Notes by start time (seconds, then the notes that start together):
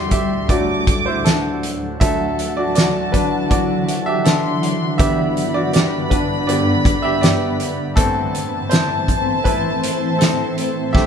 Already playing: D2 A2 D3 G3 A3 F#4 G4 D5 E5 C6
0.11 G4 E5, kick, closed hi-hat
0.49 D3 F#3 A3 F#4 D5 D6, kick, closed hi-hat
0.87 kick, closed hi-hat
1.06 E4 C5
1.24 D4 A4, snare, closed hi-hat
1.63 closed hi-hat
2.00 D3 E3 F#3 A3 A4 E5 A5, kick, closed hi-hat
2.39 closed hi-hat
2.57 F#4 D5
2.75 F#4 D5, snare, closed hi-hat
3.12 D4 B4, kick, closed hi-hat
3.50 F#4 D5, kick, closed hi-hat
3.88 closed hi-hat
4.06 G4 E5
4.24 D4 A4 C6, snare, closed hi-hat
4.63 closed hi-hat
4.98 G2 D3 B3 G4 E5 B5, kick, closed hi-hat
5.37 closed hi-hat
5.54 F#4 D5
5.73 G4 D5, snare, closed hi-hat
6.10 D4 B4, kick, closed hi-hat
6.47 G2 D3 B3 G4 D5, closed hi-hat
6.85 kick, closed hi-hat
7.02 G4 E5
7.21 G4 D5, snare, closed hi-hat
7.60 closed hi-hat
7.96 A2 E3 C4 A4 A5, kick, closed hi-hat
8.35 closed hi-hat
8.70 E4 C5, snare, closed hi-hat
9.08 kick, closed hi-hat
9.44 E4 B4, kick, closed hi-hat
9.84 closed hi-hat
10.19 C4 A4, snare, closed hi-hat
10.58 closed hi-hat
10.93 D2 D3 G3 A3 G4 E5 G5, kick, snare